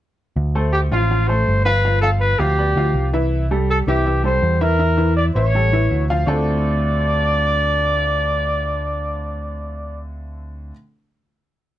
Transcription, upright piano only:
0.55 A3 A4 C5
0.92 F3 F4 F5
1.11 F3 F4 F5
1.29 A3 A4 C5
1.65 F3 F4 F5
1.85 F3 F4 F5
2.03 F3 F4 F5
2.40 F3 F4 F5
2.59 B3 B4 D5
2.77 F3 F4 F5
3.13 E3 E4 E5
3.51 G3 G4 A4
3.87 E3 E4 E5
4.06 E3 E4 E5
4.24 G3 G4 A4
4.61 E3 E4 E5
4.79 E3 E4 E5
4.97 E3 E4 E5
5.36 E3 E4 E5
5.55 G3 G4 A4
5.73 E3 E4 E5
6.10 F3 F4 F5
6.27 D3 A3 C4 D4 F4 A4

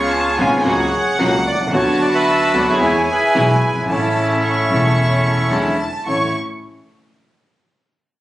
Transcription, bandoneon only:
Already playing: F4 G#4 C#5
1.47 D5
1.74 F#4 C#5
2.02 D5
2.14 B4 E5
2.57 D5
2.70 E4 G#4 C#5
3.03 C#5
3.10 E4 G#4 B4
3.66 B4
3.91 C#4 E4 A4
6.08 C#5

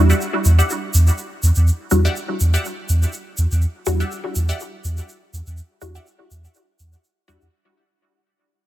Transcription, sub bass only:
Already playing: E2
0.45 E2
0.94 E2
1.43 E2
1.56 E2
1.91 E2
2.40 E2
2.89 E2
3.38 E2
3.51 E2
3.87 E2
4.35 E2
4.84 E2
5.33 E2
5.46 E2
5.82 E2
6.30 E2
6.79 E2
7.28 E2
7.42 E2

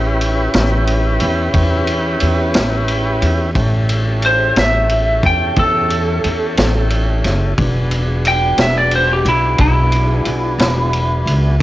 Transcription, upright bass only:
Already playing: A1
0.54 A1
1.22 E2
1.54 E2
2.22 E2
2.56 A1
3.22 E2
3.55 A1
4.56 A1
5.23 E2
5.57 E2
6.25 E2
6.58 A1
7.25 F#1
7.58 E1
8.58 E1
9.25 B1
9.59 B1
10.26 B1
10.58 E1
11.26 C#2

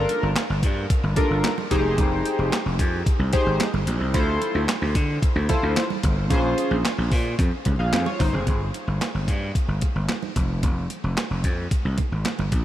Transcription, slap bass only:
0.23 G1
0.50 G1
0.63 G2
1.03 G1
1.31 G1
1.71 F1
1.98 F1
2.39 F1
2.66 F1
2.79 F2
3.19 C2
3.46 G#1
3.74 G1
3.87 A#1
4.01 C2
4.14 D2
4.55 D2
4.82 D2
4.95 D3
5.36 D2
5.63 D2
6.04 G1
6.31 A#1
6.71 A#1
6.98 A#1
7.12 A#2
7.39 F2
7.66 C#2
7.79 A#1
7.93 F2
8.20 G1
8.33 F1
8.47 G1
8.87 G1
9.15 G1
9.28 G2
9.68 G1
9.95 G1
10.36 F1
10.63 F1
11.04 F1
11.31 F1
11.44 F2
11.85 C2
12.12 G#1
12.39 G1
12.52 A#1

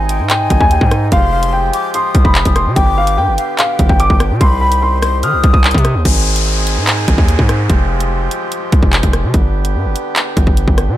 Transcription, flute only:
0.09 G5
0.30 G#5
1.12 C6
1.73 D6
1.94 D#6
2.76 D6
3.38 F5
3.58 G5
4.41 B5
5.02 C6
5.23 D#6

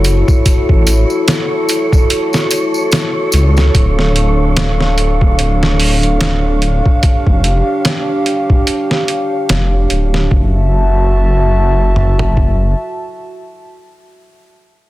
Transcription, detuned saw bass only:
Already playing: F#1
0.69 A1
3.33 C#2
3.75 D1
7.27 F1
9.50 F1
9.91 D1
10.31 F#1

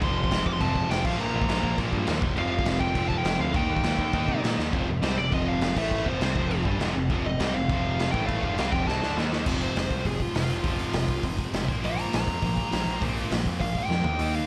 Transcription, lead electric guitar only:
0.04 C6
0.18 C6
0.47 D6
0.53 C6
0.61 A5
0.91 G5
1.06 F5
1.21 A#5
2.39 F5
2.50 F5
2.80 G5
3.08 A5
3.17 G5
3.40 F5
3.56 G5
5.04 C5
5.18 D5
5.34 D#5
5.48 F5
5.78 E5
6.08 C5
7.27 D#5
7.54 F5
8.11 G5
8.26 F5
8.42 F5
8.55 F5
8.72 G5
8.87 A5
9.64 C5
10.06 G#4
10.22 F4
10.36 F4
11.85 F5
12.00 A#5
12.16 A#5
13.61 F5
13.79 G5
14.35 F5

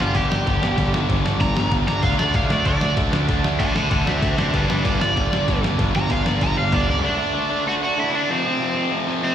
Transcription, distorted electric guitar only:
Already playing: D4
0.00 G2 D3 G3
0.14 G2 D3 G3
0.30 G2 D3 G3
0.47 G2 D3 G3
0.62 G2 D3 G3
0.78 G2 D3 G3
0.93 G2 D3 G3
1.09 G2 D3 G3
1.25 G2 D3 G3
1.40 G2 D3 G3
1.56 G2 D3 G3
1.72 G2 D3 G3
1.87 G2 D3 G3
2.03 D3 A3 D4
2.18 D3 A3 D4
2.34 D3 A3 D4
2.50 D3 A3 D4
2.66 D3 A3 D4
2.81 D3 A3 D4
2.97 D3 A3 D4
3.12 D3 A3 D4
3.28 D3 A3 D4
3.44 D3 A3 D4
3.59 D3 A3 D4
3.74 D3 A3 D4
3.90 D3 A3 D4
4.05 D3 A3 D4
4.21 D3 A3 D4
4.37 D3 A3 D4
4.52 G2 D3 G3
4.68 G2 D3 G3
4.84 G2 D3 G3
4.99 G2 D3 G3
5.16 G2 D3 G3
5.31 G2 D3 G3
5.47 G2 D3 G3
5.62 G2 D3 G3
5.78 G2 D3 G3
5.94 G2 D3 G3
6.09 G2 D3 G3
6.25 G2 D3 G3
6.41 G2 D3 G3
6.56 G2 D3 G3
6.72 G2 D3 G3
6.88 G2 D3 G3
7.03 D3 A3 D4
7.19 D3 A3 D4
7.34 D3 A3 D4
7.50 D3 A3 D4
7.66 D3 A3 D4
7.82 D3 A3 D4
7.98 D3 A3 D4
8.13 D3 A3 D4
8.29 F2 C3 F3
8.45 F2 C3 F3
8.60 F2 C3 F3
8.76 F2 C3 F3
8.90 F2 C3 F3
9.07 F2 C3 F3
9.23 F2 C3 F3

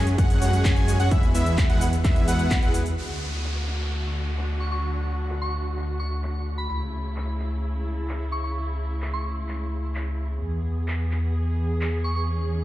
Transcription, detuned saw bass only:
Already playing: F#2
0.18 F#2
0.42 F#2
0.65 F#2
1.00 F#2
1.11 E2
1.35 E2
1.70 E2
2.05 E2
2.28 E2
2.63 E2
2.98 D2
6.70 C#2
10.42 E2

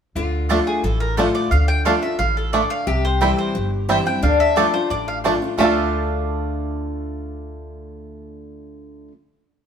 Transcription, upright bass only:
0.15 D2
0.84 A1
1.51 D2
2.19 A1
2.87 C2
3.55 G1
4.23 D2
4.90 A1
5.58 D2

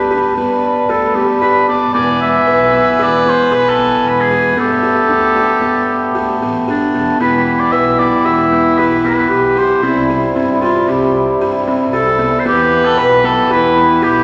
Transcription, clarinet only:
Already playing: G4
0.35 B4
0.90 A4
1.16 G4
1.95 B4
4.58 A4
6.68 D4
7.20 E4
9.29 G4
9.83 E4
10.34 E4
10.60 F4
10.88 G4
11.92 A4
12.40 C5
12.46 B4
13.52 E4

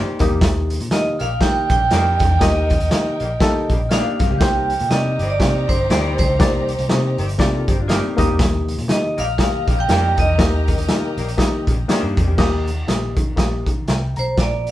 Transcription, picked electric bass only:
0.21 D#2
0.31 E2
0.41 D#2
0.81 A#2
0.91 D#3
1.21 A#1
1.41 D#3
1.70 A#1
1.92 F2
2.20 E2
2.41 D#2
2.80 D#2
2.91 D#3
3.21 A#1
3.41 D#3
3.70 A#1
4.20 G2
4.31 C#2
4.41 C2
4.81 A#2
4.91 C3
5.19 G1
5.40 C3
5.69 G1
5.90 D2
6.19 C#2
6.40 C2
6.79 C2
6.89 C3
7.18 G1
7.39 C3
7.68 G1
8.18 D#2
8.28 E2
8.39 D#2
8.78 A#2
8.89 D#3
9.18 A#1
9.38 D#3
9.68 A#1
9.89 F2
10.18 E2
10.39 D#2
10.78 D#2
10.88 D#3
11.17 A#1
11.38 D#3
11.68 A#1
12.03 G2
12.17 F2
12.28 E2
12.38 D#2
12.88 A#1
13.17 D#3
13.37 A#1
13.67 D#3
13.88 C2
14.17 B1
14.38 A#1

